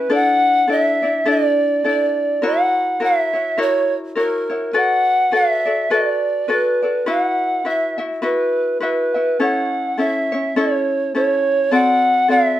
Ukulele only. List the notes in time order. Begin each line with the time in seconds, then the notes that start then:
0.10 D4 E4 A4 D5
0.68 D4 E4 A4 D5
1.02 D4 E4 D5
1.25 D4 E4 A4 D5
1.84 D4 E4 A4 D5
2.42 E4 F#4 A#4 C#5
3.00 E4 F#4 A#4 C#5
3.33 E4 F#4 C#5
3.58 E4 F#4 A#4 C#5
4.15 E4 F#4 A#4 C#5
4.50 E4 F#4 C#5
4.73 F#4 A4 B4 D5
5.31 F#4 A4 B4 D5
5.65 F#4 A4 D5
5.90 F#4 A4 B4 D5
6.48 F#4 A4 B4 D5
6.82 F#4 A4 D5
7.06 E4 F#4 B4 E5
7.65 E4 F#4 B4 E5
7.98 E4 F#4 E5
8.22 E4 F#4 B4 E5
8.80 E4 F#4 B4 E5
9.14 E4 F#4 E5
9.40 C#4 E4 A4 C#5
9.97 C#4 E4 A4 C#5
10.32 C#4 E4 C#5
10.56 C#4 E4 A4 C#5
11.15 C#4 E4 A4 C#5
11.71 C4 F#4 A4 D5
12.28 C4 F#4 A4 D5